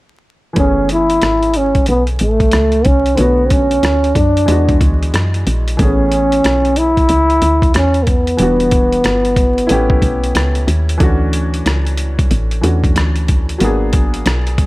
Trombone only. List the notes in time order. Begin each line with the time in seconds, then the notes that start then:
0.59 C#4
0.92 E4
1.57 C#4
1.89 B3
2.22 A3
2.86 C#4
3.18 B3
3.45 C4
3.51 C#4
4.16 D4
5.82 C#4
6.78 E4
7.76 C#4
8.03 A#3
8.08 B3